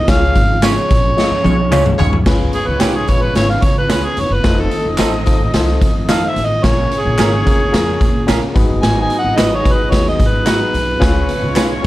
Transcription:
0.08 C#2 C#3 F3 C#4 F4 G#4 C#5 F5, kick, snare, closed hi-hat, tambourine
0.35 G#1, kick, closed hi-hat
0.62 G#3 C#4 F4 G#4 C#5, snare, clap, closed hi-hat, tambourine
0.90 A#1, kick, closed hi-hat, tambourine
1.17 G#3 C#4 F4 G#4 C#5 D#5, snare, tambourine
1.31 muted upright bass stroke
1.43 B1 G#3 C#4 F4 G#4 C#5, high tom, tambourine
1.71 C#2 G#3 C#4 F4 G#4 C#5, clap, mid tom, tambourine
1.86 mid tom
1.98 B1 G#3 C#4 F4 C#5, floor tom, tambourine
2.13 floor tom
2.25 C#2 C#3 G#3 B3 C#4 F4 G#4 B4 C#5, kick, snare, crash
2.53 G#4, closed hi-hat, tambourine
2.67 C#2 B4
2.80 B1 C#4 F4 G4 G#4 A#4 B4, snare, clap, closed hi-hat, tambourine
2.96 G#4
3.07 A#1 C#4 F4 G#4 B4 C#5, kick, closed hi-hat, tambourine
3.22 B4
3.35 G#1 C#4 F4 G#4 B4 C#5, snare, closed hi-hat, tambourine
3.50 F5, snare
3.62 C#3 C#5, kick, closed hi-hat, tambourine
3.78 B4
3.88 C#2 C#4 F4 G#4 B4, snare, clap, closed hi-hat, tambourine
4.05 G#4
4.17 F1 C#5, closed hi-hat, tambourine
4.30 F#1 B4
4.44 F1 D#3 A3 C4 D#4 F4 A4 C5 D#5, kick, snare, closed hi-hat, tambourine
4.60 A4
4.71 closed hi-hat, tambourine
4.86 F1
4.98 A1 C4 D#4 F4 A4 C5, snare, clap, closed hi-hat, tambourine
5.26 D#4 F4 A4 C5, kick, closed hi-hat, tambourine
5.40 A1
5.54 C2 D#4 F4 A4 C5, snare, closed hi-hat, tambourine
5.67 snare
5.81 F2, kick, closed hi-hat, tambourine
6.09 C4 D#4 F4 A4 C5 F5, snare, clap, closed hi-hat, tambourine
6.29 E5
6.36 A1, closed hi-hat, tambourine
6.45 D#5
6.63 A#1 A#2 C#3 A#3 C#4 F4 G#4 A#4 C#5, kick, snare, closed hi-hat, tambourine
6.91 closed hi-hat, tambourine
7.00 G#4
7.05 A#1
7.18 G#1 C#4 F4 G#4 A#4, snare, clap, closed hi-hat, tambourine
7.46 F1 C#4 F4 G#4 A#4, kick, closed hi-hat, tambourine
7.72 F2 C#4 F4 G#4 A#4, snare, closed hi-hat, tambourine
8.01 A#2, kick, closed hi-hat, tambourine
8.27 A#1 C#4 F4 G#4 A#4, snare, clap, closed hi-hat, tambourine
8.55 G#1 G#2 F#3 B3 D#4 F#4 G#4 B4 D#5, kick, closed hi-hat, tambourine
8.70 F#1
8.82 G#1 G#5, snare, closed hi-hat, tambourine
9.01 G#5
9.10 closed hi-hat, tambourine
9.19 F#5
9.24 G#1
9.36 G#1 D#4 F#4 G#4 B4 D#5, snare, clap, closed hi-hat, tambourine
9.55 C#5
9.64 B1 D#4 F#4 G#4 B4, kick, closed hi-hat, tambourine
9.73 B4
9.90 D#2 D#4 F#4 G#4 B4 C#5, kick, snare, closed hi-hat, tambourine
10.07 D#5, snare
10.20 G#2, kick, closed hi-hat, tambourine
10.28 B4
10.45 D#4 F#4 G#4 B4 A#5, snare, clap, closed hi-hat, tambourine
10.74 B1, closed hi-hat, tambourine
11.00 C#2 C#3 G#3 B3 C#4 F4 G#4 B4 C#5, kick, snare, closed hi-hat, tambourine
11.29 closed hi-hat
11.42 C#2
11.55 B1 C#4 F4 G#4 B4, snare, clap, closed hi-hat, tambourine
11.82 C#4 F4 G#4 B4

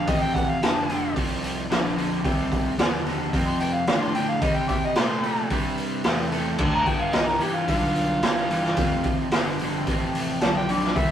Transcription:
Already playing: F5
0.07 A1 F2 C3 D#5, kick, open hi-hat
0.21 G5
0.35 F#5, kick, open hi-hat
0.50 F5
0.63 F1 F2 D3 A5, snare, open hi-hat
0.89 F2 D3, open hi-hat
1.16 C2 F2 C3, kick, open hi-hat
1.44 open hi-hat
1.69 A#1 F2 D3, snare, open hi-hat
1.97 F2 D3, open hi-hat
2.24 C2 F2 C3, kick, open hi-hat
2.52 kick, open hi-hat
2.79 D#2 F2 D3, snare, open hi-hat
3.06 F2 D3, open hi-hat
3.33 F2 C3, kick, open hi-hat
3.48 C6
3.60 G5, open hi-hat
3.74 F5
3.87 F2 A2 D3 F5, snare, open hi-hat
4.01 C6
4.14 F2 D3 G5, open hi-hat
4.29 F5
4.41 C3 G3 D#5, kick, open hi-hat
4.56 G5
4.68 D5 E5 G5, kick, open hi-hat
4.85 D#5
4.95 A#2 C3 A3 C6, snare, open hi-hat
5.23 C3 A3, open hi-hat
5.50 G2 C3 G3, kick, open hi-hat
5.78 open hi-hat
6.04 E2 C3 A3, snare, open hi-hat
6.32 C3 A3, open hi-hat
6.58 D2 G2 D3, kick, crash
6.75 A#5
6.86 G5, muted picked electric bass stroke, kick, open hi-hat
7.01 F5
7.13 C2 G2 E3 D#5, snare, open hi-hat
7.27 A#4
7.40 G2 E3 G4, muted picked electric bass stroke, open hi-hat
7.55 F4
7.68 B1 G2 D3 F4, kick, open hi-hat
7.96 open hi-hat
8.22 G1 G2 E3, snare, open hi-hat
8.51 G2 E3, open hi-hat
8.64 snare
8.77 F1 F2 C3, kick, open hi-hat
9.04 muted picked electric bass stroke, kick, open hi-hat
9.31 G1 F2 D3, snare, open hi-hat
9.59 F2 D3, open hi-hat
9.87 A1 F2 C3, kick, open hi-hat
10.15 open hi-hat
10.41 B1 F2 D3 A5, snare, open hi-hat
10.57 G5
10.69 F2 D3 D5, open hi-hat
10.84 snare
10.95 C2 C3 G3 E5, kick, open hi-hat

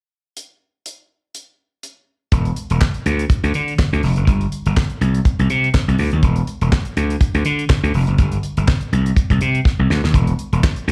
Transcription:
0.37 closed hi-hat
0.86 closed hi-hat
1.35 closed hi-hat
1.83 closed hi-hat
2.32 E1, kick, closed hi-hat
2.45 closed hi-hat
2.56 closed hi-hat
2.70 E1, closed hi-hat
2.81 kick, snare, clap
2.94 closed hi-hat
3.06 D2, closed hi-hat
3.19 closed hi-hat
3.30 kick, closed hi-hat
3.43 D2, closed hi-hat
3.54 D3, closed hi-hat
3.68 closed hi-hat
3.79 kick, snare, clap
3.93 D2, closed hi-hat
4.03 F1, snare, open hi-hat
4.16 F#1, closed hi-hat
4.27 G1, kick, closed hi-hat
4.41 closed hi-hat
4.52 closed hi-hat
4.66 G1, closed hi-hat
4.77 kick, snare, clap
4.90 closed hi-hat
5.01 C2, closed hi-hat
5.14 closed hi-hat
5.25 kick, closed hi-hat
5.39 C2, closed hi-hat
5.50 C3, closed hi-hat
5.64 closed hi-hat
5.74 kick, snare, clap
5.88 C2, closed hi-hat
5.98 D2, open hi-hat
6.12 D#2, closed hi-hat
6.23 E1, kick, closed hi-hat
6.36 closed hi-hat
6.47 closed hi-hat
6.61 E1, closed hi-hat
6.72 kick, snare, clap
6.85 closed hi-hat
6.97 D2, closed hi-hat
7.10 closed hi-hat
7.21 kick, closed hi-hat
7.34 D2, closed hi-hat
7.45 D3, closed hi-hat
7.59 closed hi-hat
7.70 kick, snare, clap
7.83 D2, closed hi-hat
7.94 F1, open hi-hat
8.07 F#1, closed hi-hat
8.18 G1, kick, closed hi-hat
8.32 closed hi-hat
8.43 closed hi-hat
8.57 G1, closed hi-hat
8.68 kick, snare, clap
8.81 closed hi-hat
8.93 C2, closed hi-hat
9.06 closed hi-hat
9.16 kick, closed hi-hat
9.30 C2, kick, closed hi-hat
9.41 C3, closed hi-hat
9.55 closed hi-hat
9.65 kick, snare
9.79 C2
9.90 D2, snare
10.04 D#2, snare
10.14 E1, kick, closed hi-hat
10.27 closed hi-hat
10.39 closed hi-hat
10.53 E1, closed hi-hat
10.63 kick, snare, clap
10.76 closed hi-hat
10.88 D2, closed hi-hat

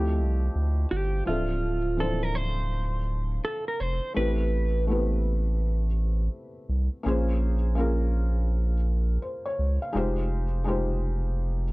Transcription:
Already playing: D2 F3 A3 C4 E4 G4 D#5
0.19 C2
0.55 D2
0.91 G1 G4
1.25 D1 F3 C4 D4 F4 E5
1.30 A4
1.97 E3 C4 D4 E4 A4
2.01 F3 C5
2.23 A#4
2.35 C5
3.45 A4
3.68 A#4
3.80 F1 C5
4.14 A1 A3 C4 E4 G4 B4
4.19 B4
4.87 A3 B3 E4 G4
4.92 C4 B4
6.69 C2
7.03 A#1 A#3 C#4 F4 G#4
7.08 C5
7.75 A#3 C#4 F4 G#4
7.80 A#4
9.22 C5
9.46 C#5
9.59 C#2
9.82 F5
9.93 F1 G#3 D#4 F4 G4
9.97 C5
10.64 G#3 D#4 F4 G4
10.69 C5

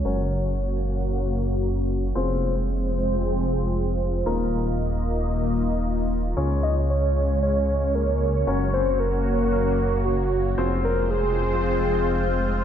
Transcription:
Already playing: C#4 C#5
0.05 F#1 A#3 C#4 F#4 A#4 C#5
2.15 F1 G#3 C4 F4 G#4 C5
4.26 D#1 A#3 D#4 F4 A#4 D#5
6.37 C#2 G#3 C#4 F4 G#4 C#5
6.63 D#5
6.90 C#5
7.43 C#5
7.95 A#4
8.47 F#1 A#3 C#4 F#4 A#4 C#5
8.73 C5
9.00 A#4
9.52 A#4
10.05 F#4
10.58 F1 G#3 C4 F4 G#4 C5
10.85 A#4
11.11 G#4
11.63 G#4

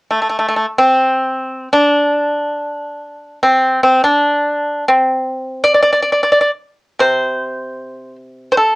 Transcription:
0.11 A3
0.22 A3
0.29 A3
0.39 A3
0.48 A3
0.56 A3
0.78 C4
1.73 D4
3.43 C4
3.83 C4
4.04 D4
4.88 C4
5.64 D5
5.74 D5
5.83 D5
5.93 D5
6.03 D5
6.12 D5
6.23 D5
6.32 D5
6.41 D5
7.00 C3 C5
8.52 C5
8.57 A4

